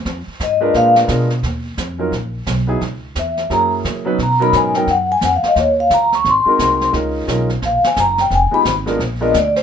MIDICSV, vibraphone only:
0, 0, Header, 1, 2, 480
1, 0, Start_track
1, 0, Key_signature, -6, "minor"
1, 0, Tempo, 343840
1, 81, Time_signature, 4, 2, 24, 8
1, 13441, End_track
2, 0, Start_track
2, 0, Title_t, "Vibraphone"
2, 0, Program_c, 0, 11
2, 603, Note_on_c, 0, 75, 84
2, 1030, Note_off_c, 0, 75, 0
2, 1067, Note_on_c, 0, 77, 99
2, 1347, Note_off_c, 0, 77, 0
2, 4456, Note_on_c, 0, 76, 74
2, 4879, Note_off_c, 0, 76, 0
2, 4926, Note_on_c, 0, 82, 95
2, 5094, Note_off_c, 0, 82, 0
2, 5904, Note_on_c, 0, 82, 90
2, 6167, Note_off_c, 0, 82, 0
2, 6176, Note_on_c, 0, 83, 113
2, 6335, Note_off_c, 0, 83, 0
2, 6376, Note_on_c, 0, 80, 75
2, 6643, Note_off_c, 0, 80, 0
2, 6647, Note_on_c, 0, 79, 85
2, 6810, Note_off_c, 0, 79, 0
2, 6852, Note_on_c, 0, 78, 96
2, 7121, Note_off_c, 0, 78, 0
2, 7145, Note_on_c, 0, 80, 94
2, 7300, Note_off_c, 0, 80, 0
2, 7325, Note_on_c, 0, 78, 81
2, 7460, Note_off_c, 0, 78, 0
2, 7488, Note_on_c, 0, 77, 73
2, 7622, Note_off_c, 0, 77, 0
2, 7651, Note_on_c, 0, 75, 84
2, 7784, Note_off_c, 0, 75, 0
2, 7812, Note_on_c, 0, 73, 78
2, 8081, Note_off_c, 0, 73, 0
2, 8100, Note_on_c, 0, 77, 94
2, 8257, Note_off_c, 0, 77, 0
2, 8291, Note_on_c, 0, 82, 92
2, 8561, Note_off_c, 0, 82, 0
2, 8588, Note_on_c, 0, 85, 102
2, 8741, Note_off_c, 0, 85, 0
2, 8788, Note_on_c, 0, 84, 89
2, 9660, Note_off_c, 0, 84, 0
2, 10686, Note_on_c, 0, 77, 85
2, 10957, Note_off_c, 0, 77, 0
2, 10984, Note_on_c, 0, 80, 86
2, 11139, Note_off_c, 0, 80, 0
2, 11169, Note_on_c, 0, 82, 92
2, 11439, Note_off_c, 0, 82, 0
2, 11458, Note_on_c, 0, 79, 89
2, 11615, Note_off_c, 0, 79, 0
2, 11645, Note_on_c, 0, 80, 88
2, 11917, Note_off_c, 0, 80, 0
2, 11925, Note_on_c, 0, 83, 110
2, 12026, Note_off_c, 0, 83, 0
2, 12882, Note_on_c, 0, 75, 83
2, 13046, Note_off_c, 0, 75, 0
2, 13077, Note_on_c, 0, 74, 83
2, 13352, Note_off_c, 0, 74, 0
2, 13355, Note_on_c, 0, 72, 91
2, 13441, Note_off_c, 0, 72, 0
2, 13441, End_track
0, 0, End_of_file